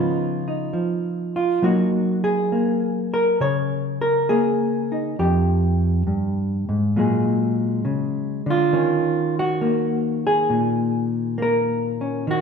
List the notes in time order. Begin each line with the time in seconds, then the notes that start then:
Already playing: C#3 F3 B3 D#4 F4
0.48 D#4
0.73 F3
1.36 F4
1.62 F#3 A#3 D#4 F#4
2.24 G#4
2.52 A#3
3.14 A#4
3.40 C#3 C#5
4.01 A#4
4.29 A#3 G#4
4.92 D#4
5.19 F2 G4
6.07 G2
6.69 G#2
6.96 A#2 F#3 G#3 G#4
7.85 C#3
8.46 D3
8.50 F4
8.73 D#3 C#4
9.39 F#4
9.61 A#3
10.27 G#4
10.50 A#2
11.38 A#3
11.42 A#4
12.01 C#4
12.27 D#3 F#4